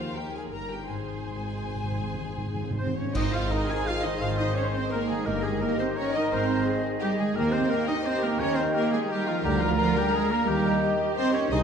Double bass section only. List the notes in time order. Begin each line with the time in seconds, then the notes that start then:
Already playing: D#2
0.53 G1
0.89 G#1
3.15 G#1
4.21 G#1
5.26 G1
6.31 G#1
7.36 D#2
8.40 D#2
9.44 D2
10.48 D#2
11.51 C2